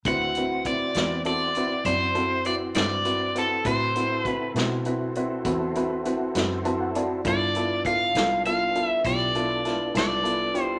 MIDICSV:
0, 0, Header, 1, 6, 480
1, 0, Start_track
1, 0, Tempo, 599401
1, 46, Time_signature, 12, 3, 24, 8
1, 8641, End_track
2, 0, Start_track
2, 0, Title_t, "Overdriven electric guitar"
2, 0, Program_c, 0, 29
2, 62, Note_on_c, 0, 78, 87
2, 530, Note_off_c, 0, 78, 0
2, 534, Note_on_c, 0, 74, 84
2, 976, Note_off_c, 0, 74, 0
2, 1015, Note_on_c, 0, 74, 85
2, 1486, Note_off_c, 0, 74, 0
2, 1489, Note_on_c, 0, 72, 81
2, 1971, Note_off_c, 0, 72, 0
2, 1974, Note_on_c, 0, 74, 77
2, 2037, Note_off_c, 0, 74, 0
2, 2217, Note_on_c, 0, 74, 83
2, 2703, Note_off_c, 0, 74, 0
2, 2709, Note_on_c, 0, 69, 68
2, 2935, Note_on_c, 0, 72, 69
2, 2942, Note_off_c, 0, 69, 0
2, 3400, Note_off_c, 0, 72, 0
2, 3400, Note_on_c, 0, 71, 69
2, 3615, Note_off_c, 0, 71, 0
2, 5830, Note_on_c, 0, 74, 94
2, 6263, Note_off_c, 0, 74, 0
2, 6297, Note_on_c, 0, 77, 98
2, 6737, Note_off_c, 0, 77, 0
2, 6779, Note_on_c, 0, 77, 93
2, 7092, Note_off_c, 0, 77, 0
2, 7092, Note_on_c, 0, 76, 93
2, 7218, Note_off_c, 0, 76, 0
2, 7259, Note_on_c, 0, 74, 81
2, 7979, Note_off_c, 0, 74, 0
2, 7988, Note_on_c, 0, 74, 77
2, 8509, Note_off_c, 0, 74, 0
2, 8509, Note_on_c, 0, 72, 77
2, 8641, Note_off_c, 0, 72, 0
2, 8641, End_track
3, 0, Start_track
3, 0, Title_t, "Tonewheel organ"
3, 0, Program_c, 1, 16
3, 43, Note_on_c, 1, 66, 54
3, 44, Note_on_c, 1, 60, 57
3, 46, Note_on_c, 1, 64, 58
3, 49, Note_on_c, 1, 72, 57
3, 2891, Note_off_c, 1, 60, 0
3, 2891, Note_off_c, 1, 66, 0
3, 2892, Note_off_c, 1, 64, 0
3, 2894, Note_off_c, 1, 72, 0
3, 2930, Note_on_c, 1, 64, 55
3, 2931, Note_on_c, 1, 69, 61
3, 2932, Note_on_c, 1, 66, 65
3, 2933, Note_on_c, 1, 72, 60
3, 5775, Note_off_c, 1, 64, 0
3, 5776, Note_off_c, 1, 66, 0
3, 5776, Note_off_c, 1, 69, 0
3, 5777, Note_off_c, 1, 72, 0
3, 5805, Note_on_c, 1, 62, 60
3, 5807, Note_on_c, 1, 59, 62
3, 5807, Note_on_c, 1, 65, 64
3, 5808, Note_on_c, 1, 69, 65
3, 8641, Note_off_c, 1, 59, 0
3, 8641, Note_off_c, 1, 62, 0
3, 8641, Note_off_c, 1, 65, 0
3, 8641, Note_off_c, 1, 69, 0
3, 8641, End_track
4, 0, Start_track
4, 0, Title_t, "Upright piano"
4, 0, Program_c, 2, 0
4, 54, Note_on_c, 2, 60, 55
4, 54, Note_on_c, 2, 64, 45
4, 54, Note_on_c, 2, 66, 56
4, 60, Note_on_c, 2, 71, 56
4, 229, Note_off_c, 2, 60, 0
4, 229, Note_off_c, 2, 64, 0
4, 230, Note_off_c, 2, 66, 0
4, 232, Note_off_c, 2, 71, 0
4, 297, Note_on_c, 2, 60, 47
4, 297, Note_on_c, 2, 66, 46
4, 300, Note_on_c, 2, 64, 40
4, 302, Note_on_c, 2, 71, 55
4, 471, Note_off_c, 2, 60, 0
4, 471, Note_off_c, 2, 66, 0
4, 472, Note_off_c, 2, 64, 0
4, 473, Note_off_c, 2, 71, 0
4, 525, Note_on_c, 2, 71, 45
4, 526, Note_on_c, 2, 64, 39
4, 527, Note_on_c, 2, 60, 45
4, 528, Note_on_c, 2, 66, 40
4, 704, Note_off_c, 2, 71, 0
4, 705, Note_off_c, 2, 64, 0
4, 706, Note_off_c, 2, 60, 0
4, 706, Note_off_c, 2, 66, 0
4, 774, Note_on_c, 2, 60, 48
4, 774, Note_on_c, 2, 64, 47
4, 774, Note_on_c, 2, 66, 44
4, 776, Note_on_c, 2, 71, 60
4, 949, Note_off_c, 2, 60, 0
4, 949, Note_off_c, 2, 64, 0
4, 949, Note_off_c, 2, 66, 0
4, 950, Note_off_c, 2, 71, 0
4, 1002, Note_on_c, 2, 60, 47
4, 1002, Note_on_c, 2, 64, 43
4, 1003, Note_on_c, 2, 66, 45
4, 1005, Note_on_c, 2, 69, 56
4, 1182, Note_off_c, 2, 60, 0
4, 1183, Note_off_c, 2, 64, 0
4, 1183, Note_off_c, 2, 66, 0
4, 1184, Note_off_c, 2, 69, 0
4, 1256, Note_on_c, 2, 60, 48
4, 1257, Note_on_c, 2, 64, 42
4, 1257, Note_on_c, 2, 71, 50
4, 1263, Note_on_c, 2, 66, 47
4, 1429, Note_off_c, 2, 60, 0
4, 1430, Note_off_c, 2, 64, 0
4, 1430, Note_off_c, 2, 71, 0
4, 1433, Note_off_c, 2, 66, 0
4, 1488, Note_on_c, 2, 60, 47
4, 1488, Note_on_c, 2, 64, 42
4, 1488, Note_on_c, 2, 66, 41
4, 1493, Note_on_c, 2, 74, 54
4, 1665, Note_off_c, 2, 60, 0
4, 1665, Note_off_c, 2, 64, 0
4, 1665, Note_off_c, 2, 66, 0
4, 1668, Note_off_c, 2, 74, 0
4, 1720, Note_on_c, 2, 64, 46
4, 1721, Note_on_c, 2, 60, 53
4, 1721, Note_on_c, 2, 66, 47
4, 1721, Note_on_c, 2, 69, 56
4, 1901, Note_off_c, 2, 60, 0
4, 1901, Note_off_c, 2, 64, 0
4, 1901, Note_off_c, 2, 66, 0
4, 1901, Note_off_c, 2, 69, 0
4, 1967, Note_on_c, 2, 60, 49
4, 1970, Note_on_c, 2, 71, 55
4, 1973, Note_on_c, 2, 64, 42
4, 1974, Note_on_c, 2, 66, 43
4, 2144, Note_off_c, 2, 60, 0
4, 2146, Note_off_c, 2, 71, 0
4, 2147, Note_off_c, 2, 64, 0
4, 2148, Note_off_c, 2, 66, 0
4, 2208, Note_on_c, 2, 60, 49
4, 2210, Note_on_c, 2, 64, 42
4, 2210, Note_on_c, 2, 71, 46
4, 2213, Note_on_c, 2, 66, 43
4, 2385, Note_off_c, 2, 60, 0
4, 2385, Note_off_c, 2, 64, 0
4, 2386, Note_off_c, 2, 71, 0
4, 2387, Note_off_c, 2, 66, 0
4, 2443, Note_on_c, 2, 64, 39
4, 2443, Note_on_c, 2, 66, 48
4, 2444, Note_on_c, 2, 71, 51
4, 2445, Note_on_c, 2, 60, 43
4, 2622, Note_off_c, 2, 64, 0
4, 2622, Note_off_c, 2, 66, 0
4, 2623, Note_off_c, 2, 60, 0
4, 2623, Note_off_c, 2, 71, 0
4, 2683, Note_on_c, 2, 60, 48
4, 2685, Note_on_c, 2, 64, 38
4, 2686, Note_on_c, 2, 66, 37
4, 2687, Note_on_c, 2, 71, 48
4, 2862, Note_off_c, 2, 60, 0
4, 2863, Note_off_c, 2, 64, 0
4, 2864, Note_off_c, 2, 66, 0
4, 2864, Note_off_c, 2, 71, 0
4, 2928, Note_on_c, 2, 60, 55
4, 2929, Note_on_c, 2, 64, 52
4, 2930, Note_on_c, 2, 66, 47
4, 2931, Note_on_c, 2, 71, 69
4, 3104, Note_off_c, 2, 60, 0
4, 3105, Note_off_c, 2, 64, 0
4, 3105, Note_off_c, 2, 66, 0
4, 3106, Note_off_c, 2, 71, 0
4, 3170, Note_on_c, 2, 60, 45
4, 3173, Note_on_c, 2, 64, 47
4, 3173, Note_on_c, 2, 66, 44
4, 3174, Note_on_c, 2, 71, 54
4, 3345, Note_off_c, 2, 60, 0
4, 3347, Note_off_c, 2, 64, 0
4, 3347, Note_off_c, 2, 66, 0
4, 3347, Note_off_c, 2, 71, 0
4, 3413, Note_on_c, 2, 60, 51
4, 3413, Note_on_c, 2, 66, 40
4, 3415, Note_on_c, 2, 64, 45
4, 3415, Note_on_c, 2, 71, 49
4, 3586, Note_off_c, 2, 60, 0
4, 3586, Note_off_c, 2, 66, 0
4, 3588, Note_off_c, 2, 64, 0
4, 3588, Note_off_c, 2, 71, 0
4, 3649, Note_on_c, 2, 60, 61
4, 3652, Note_on_c, 2, 64, 50
4, 3652, Note_on_c, 2, 66, 52
4, 3654, Note_on_c, 2, 71, 69
4, 3825, Note_off_c, 2, 60, 0
4, 3826, Note_off_c, 2, 64, 0
4, 3826, Note_off_c, 2, 66, 0
4, 3827, Note_off_c, 2, 71, 0
4, 3890, Note_on_c, 2, 60, 58
4, 3890, Note_on_c, 2, 66, 57
4, 3891, Note_on_c, 2, 64, 53
4, 3895, Note_on_c, 2, 71, 67
4, 4065, Note_off_c, 2, 60, 0
4, 4065, Note_off_c, 2, 64, 0
4, 4065, Note_off_c, 2, 66, 0
4, 4067, Note_off_c, 2, 71, 0
4, 4136, Note_on_c, 2, 60, 62
4, 4136, Note_on_c, 2, 66, 56
4, 4137, Note_on_c, 2, 64, 56
4, 4139, Note_on_c, 2, 71, 64
4, 4308, Note_off_c, 2, 60, 0
4, 4308, Note_off_c, 2, 64, 0
4, 4308, Note_off_c, 2, 66, 0
4, 4309, Note_off_c, 2, 71, 0
4, 4371, Note_on_c, 2, 60, 60
4, 4373, Note_on_c, 2, 64, 58
4, 4375, Note_on_c, 2, 66, 52
4, 4375, Note_on_c, 2, 71, 66
4, 4545, Note_off_c, 2, 60, 0
4, 4546, Note_off_c, 2, 64, 0
4, 4547, Note_off_c, 2, 66, 0
4, 4547, Note_off_c, 2, 71, 0
4, 4615, Note_on_c, 2, 60, 63
4, 4615, Note_on_c, 2, 64, 61
4, 4615, Note_on_c, 2, 66, 55
4, 4617, Note_on_c, 2, 71, 77
4, 4787, Note_off_c, 2, 60, 0
4, 4787, Note_off_c, 2, 64, 0
4, 4787, Note_off_c, 2, 66, 0
4, 4788, Note_off_c, 2, 71, 0
4, 4847, Note_on_c, 2, 60, 60
4, 4848, Note_on_c, 2, 64, 52
4, 4850, Note_on_c, 2, 66, 51
4, 4851, Note_on_c, 2, 71, 65
4, 5023, Note_off_c, 2, 60, 0
4, 5024, Note_off_c, 2, 64, 0
4, 5025, Note_off_c, 2, 66, 0
4, 5025, Note_off_c, 2, 71, 0
4, 5086, Note_on_c, 2, 60, 55
4, 5087, Note_on_c, 2, 64, 53
4, 5089, Note_on_c, 2, 66, 50
4, 5092, Note_on_c, 2, 71, 61
4, 5263, Note_off_c, 2, 60, 0
4, 5263, Note_off_c, 2, 64, 0
4, 5264, Note_off_c, 2, 66, 0
4, 5266, Note_off_c, 2, 71, 0
4, 5323, Note_on_c, 2, 64, 52
4, 5324, Note_on_c, 2, 60, 60
4, 5326, Note_on_c, 2, 71, 64
4, 5326, Note_on_c, 2, 81, 53
4, 5329, Note_on_c, 2, 66, 52
4, 5435, Note_off_c, 2, 81, 0
4, 5450, Note_on_c, 2, 78, 54
4, 5501, Note_off_c, 2, 64, 0
4, 5502, Note_off_c, 2, 60, 0
4, 5503, Note_off_c, 2, 71, 0
4, 5504, Note_off_c, 2, 66, 0
4, 5557, Note_off_c, 2, 78, 0
4, 5567, Note_on_c, 2, 60, 53
4, 5570, Note_on_c, 2, 64, 55
4, 5571, Note_on_c, 2, 74, 49
4, 5575, Note_on_c, 2, 66, 52
4, 5575, Note_on_c, 2, 69, 58
4, 5743, Note_off_c, 2, 60, 0
4, 5745, Note_off_c, 2, 64, 0
4, 5747, Note_off_c, 2, 66, 0
4, 5747, Note_off_c, 2, 69, 0
4, 5789, Note_off_c, 2, 74, 0
4, 5811, Note_on_c, 2, 64, 56
4, 5813, Note_on_c, 2, 59, 57
4, 5813, Note_on_c, 2, 65, 59
4, 5819, Note_on_c, 2, 69, 58
4, 5985, Note_off_c, 2, 64, 0
4, 5986, Note_off_c, 2, 59, 0
4, 5986, Note_off_c, 2, 65, 0
4, 5989, Note_off_c, 2, 69, 0
4, 6053, Note_on_c, 2, 59, 52
4, 6055, Note_on_c, 2, 64, 46
4, 6055, Note_on_c, 2, 69, 55
4, 6059, Note_on_c, 2, 65, 49
4, 6227, Note_off_c, 2, 59, 0
4, 6227, Note_off_c, 2, 64, 0
4, 6228, Note_off_c, 2, 69, 0
4, 6229, Note_off_c, 2, 65, 0
4, 6294, Note_on_c, 2, 59, 48
4, 6299, Note_on_c, 2, 64, 43
4, 6299, Note_on_c, 2, 65, 44
4, 6301, Note_on_c, 2, 69, 46
4, 6467, Note_off_c, 2, 59, 0
4, 6469, Note_off_c, 2, 64, 0
4, 6469, Note_off_c, 2, 65, 0
4, 6470, Note_off_c, 2, 69, 0
4, 6537, Note_on_c, 2, 59, 48
4, 6538, Note_on_c, 2, 64, 43
4, 6539, Note_on_c, 2, 65, 51
4, 6541, Note_on_c, 2, 69, 55
4, 6708, Note_off_c, 2, 59, 0
4, 6709, Note_off_c, 2, 64, 0
4, 6710, Note_off_c, 2, 65, 0
4, 6711, Note_off_c, 2, 69, 0
4, 6774, Note_on_c, 2, 59, 54
4, 6776, Note_on_c, 2, 65, 48
4, 6778, Note_on_c, 2, 69, 58
4, 6779, Note_on_c, 2, 64, 48
4, 6947, Note_off_c, 2, 59, 0
4, 6948, Note_off_c, 2, 65, 0
4, 6949, Note_off_c, 2, 69, 0
4, 6950, Note_off_c, 2, 64, 0
4, 7008, Note_on_c, 2, 59, 49
4, 7009, Note_on_c, 2, 65, 46
4, 7010, Note_on_c, 2, 64, 41
4, 7011, Note_on_c, 2, 69, 55
4, 7184, Note_off_c, 2, 59, 0
4, 7185, Note_off_c, 2, 64, 0
4, 7185, Note_off_c, 2, 65, 0
4, 7186, Note_off_c, 2, 69, 0
4, 7256, Note_on_c, 2, 59, 51
4, 7257, Note_on_c, 2, 65, 47
4, 7260, Note_on_c, 2, 67, 57
4, 7261, Note_on_c, 2, 64, 46
4, 7428, Note_off_c, 2, 59, 0
4, 7429, Note_off_c, 2, 65, 0
4, 7431, Note_off_c, 2, 64, 0
4, 7431, Note_off_c, 2, 67, 0
4, 7490, Note_on_c, 2, 59, 55
4, 7490, Note_on_c, 2, 69, 60
4, 7491, Note_on_c, 2, 64, 54
4, 7492, Note_on_c, 2, 65, 48
4, 7666, Note_off_c, 2, 59, 0
4, 7666, Note_off_c, 2, 64, 0
4, 7666, Note_off_c, 2, 65, 0
4, 7666, Note_off_c, 2, 69, 0
4, 7726, Note_on_c, 2, 59, 53
4, 7727, Note_on_c, 2, 64, 46
4, 7729, Note_on_c, 2, 69, 52
4, 7731, Note_on_c, 2, 65, 48
4, 7904, Note_off_c, 2, 59, 0
4, 7904, Note_off_c, 2, 64, 0
4, 7905, Note_off_c, 2, 69, 0
4, 7906, Note_off_c, 2, 65, 0
4, 7961, Note_on_c, 2, 64, 47
4, 7963, Note_on_c, 2, 59, 48
4, 7963, Note_on_c, 2, 65, 45
4, 7965, Note_on_c, 2, 69, 52
4, 8141, Note_off_c, 2, 64, 0
4, 8142, Note_off_c, 2, 59, 0
4, 8143, Note_off_c, 2, 65, 0
4, 8143, Note_off_c, 2, 69, 0
4, 8191, Note_on_c, 2, 59, 49
4, 8191, Note_on_c, 2, 65, 44
4, 8195, Note_on_c, 2, 64, 43
4, 8197, Note_on_c, 2, 69, 51
4, 8377, Note_off_c, 2, 59, 0
4, 8377, Note_off_c, 2, 65, 0
4, 8379, Note_off_c, 2, 64, 0
4, 8379, Note_off_c, 2, 69, 0
4, 8440, Note_on_c, 2, 59, 46
4, 8440, Note_on_c, 2, 64, 42
4, 8440, Note_on_c, 2, 65, 46
4, 8445, Note_on_c, 2, 67, 55
4, 8621, Note_off_c, 2, 59, 0
4, 8621, Note_off_c, 2, 64, 0
4, 8621, Note_off_c, 2, 65, 0
4, 8624, Note_off_c, 2, 67, 0
4, 8641, End_track
5, 0, Start_track
5, 0, Title_t, "Fingered electric bass"
5, 0, Program_c, 3, 33
5, 42, Note_on_c, 3, 38, 75
5, 741, Note_off_c, 3, 38, 0
5, 762, Note_on_c, 3, 40, 77
5, 1460, Note_off_c, 3, 40, 0
5, 1480, Note_on_c, 3, 42, 73
5, 2179, Note_off_c, 3, 42, 0
5, 2203, Note_on_c, 3, 43, 75
5, 2900, Note_off_c, 3, 43, 0
5, 2922, Note_on_c, 3, 45, 71
5, 3619, Note_off_c, 3, 45, 0
5, 3640, Note_on_c, 3, 47, 78
5, 4338, Note_off_c, 3, 47, 0
5, 4363, Note_on_c, 3, 40, 69
5, 5060, Note_off_c, 3, 40, 0
5, 5085, Note_on_c, 3, 42, 80
5, 5781, Note_off_c, 3, 42, 0
5, 5802, Note_on_c, 3, 43, 75
5, 6500, Note_off_c, 3, 43, 0
5, 6524, Note_on_c, 3, 36, 78
5, 7221, Note_off_c, 3, 36, 0
5, 7245, Note_on_c, 3, 35, 79
5, 7942, Note_off_c, 3, 35, 0
5, 7965, Note_on_c, 3, 36, 79
5, 8641, Note_off_c, 3, 36, 0
5, 8641, End_track
6, 0, Start_track
6, 0, Title_t, "Drums"
6, 40, Note_on_c, 9, 42, 64
6, 41, Note_on_c, 9, 36, 87
6, 120, Note_off_c, 9, 42, 0
6, 122, Note_off_c, 9, 36, 0
6, 279, Note_on_c, 9, 42, 55
6, 359, Note_off_c, 9, 42, 0
6, 519, Note_on_c, 9, 42, 56
6, 520, Note_on_c, 9, 36, 58
6, 599, Note_off_c, 9, 42, 0
6, 600, Note_off_c, 9, 36, 0
6, 756, Note_on_c, 9, 42, 73
6, 772, Note_on_c, 9, 38, 92
6, 836, Note_off_c, 9, 42, 0
6, 852, Note_off_c, 9, 38, 0
6, 998, Note_on_c, 9, 42, 50
6, 1078, Note_off_c, 9, 42, 0
6, 1239, Note_on_c, 9, 42, 50
6, 1319, Note_off_c, 9, 42, 0
6, 1480, Note_on_c, 9, 42, 72
6, 1481, Note_on_c, 9, 36, 67
6, 1560, Note_off_c, 9, 42, 0
6, 1561, Note_off_c, 9, 36, 0
6, 1721, Note_on_c, 9, 42, 48
6, 1801, Note_off_c, 9, 42, 0
6, 1959, Note_on_c, 9, 42, 54
6, 2039, Note_off_c, 9, 42, 0
6, 2198, Note_on_c, 9, 42, 82
6, 2214, Note_on_c, 9, 38, 105
6, 2278, Note_off_c, 9, 42, 0
6, 2294, Note_off_c, 9, 38, 0
6, 2442, Note_on_c, 9, 42, 54
6, 2522, Note_off_c, 9, 42, 0
6, 2687, Note_on_c, 9, 42, 51
6, 2767, Note_off_c, 9, 42, 0
6, 2921, Note_on_c, 9, 42, 68
6, 2923, Note_on_c, 9, 36, 90
6, 3001, Note_off_c, 9, 42, 0
6, 3003, Note_off_c, 9, 36, 0
6, 3167, Note_on_c, 9, 42, 55
6, 3247, Note_off_c, 9, 42, 0
6, 3404, Note_on_c, 9, 36, 64
6, 3405, Note_on_c, 9, 42, 42
6, 3484, Note_off_c, 9, 36, 0
6, 3485, Note_off_c, 9, 42, 0
6, 3649, Note_on_c, 9, 42, 66
6, 3665, Note_on_c, 9, 38, 94
6, 3729, Note_off_c, 9, 42, 0
6, 3745, Note_off_c, 9, 38, 0
6, 3883, Note_on_c, 9, 42, 49
6, 3963, Note_off_c, 9, 42, 0
6, 4127, Note_on_c, 9, 42, 48
6, 4207, Note_off_c, 9, 42, 0
6, 4363, Note_on_c, 9, 42, 74
6, 4364, Note_on_c, 9, 36, 80
6, 4443, Note_off_c, 9, 42, 0
6, 4444, Note_off_c, 9, 36, 0
6, 4607, Note_on_c, 9, 42, 52
6, 4687, Note_off_c, 9, 42, 0
6, 4846, Note_on_c, 9, 42, 56
6, 4927, Note_off_c, 9, 42, 0
6, 5084, Note_on_c, 9, 42, 79
6, 5100, Note_on_c, 9, 38, 95
6, 5164, Note_off_c, 9, 42, 0
6, 5180, Note_off_c, 9, 38, 0
6, 5325, Note_on_c, 9, 42, 57
6, 5405, Note_off_c, 9, 42, 0
6, 5566, Note_on_c, 9, 42, 60
6, 5646, Note_off_c, 9, 42, 0
6, 5805, Note_on_c, 9, 36, 96
6, 5805, Note_on_c, 9, 42, 76
6, 5885, Note_off_c, 9, 36, 0
6, 5885, Note_off_c, 9, 42, 0
6, 6044, Note_on_c, 9, 42, 55
6, 6124, Note_off_c, 9, 42, 0
6, 6285, Note_on_c, 9, 36, 65
6, 6287, Note_on_c, 9, 42, 51
6, 6365, Note_off_c, 9, 36, 0
6, 6367, Note_off_c, 9, 42, 0
6, 6526, Note_on_c, 9, 42, 73
6, 6542, Note_on_c, 9, 38, 98
6, 6606, Note_off_c, 9, 42, 0
6, 6622, Note_off_c, 9, 38, 0
6, 6769, Note_on_c, 9, 42, 50
6, 6849, Note_off_c, 9, 42, 0
6, 7009, Note_on_c, 9, 42, 43
6, 7089, Note_off_c, 9, 42, 0
6, 7244, Note_on_c, 9, 36, 77
6, 7244, Note_on_c, 9, 42, 73
6, 7324, Note_off_c, 9, 36, 0
6, 7325, Note_off_c, 9, 42, 0
6, 7487, Note_on_c, 9, 42, 44
6, 7567, Note_off_c, 9, 42, 0
6, 7728, Note_on_c, 9, 42, 50
6, 7744, Note_on_c, 9, 38, 30
6, 7808, Note_off_c, 9, 42, 0
6, 7824, Note_off_c, 9, 38, 0
6, 7968, Note_on_c, 9, 42, 70
6, 7984, Note_on_c, 9, 38, 97
6, 8049, Note_off_c, 9, 42, 0
6, 8065, Note_off_c, 9, 38, 0
6, 8209, Note_on_c, 9, 42, 61
6, 8289, Note_off_c, 9, 42, 0
6, 8447, Note_on_c, 9, 42, 53
6, 8528, Note_off_c, 9, 42, 0
6, 8641, End_track
0, 0, End_of_file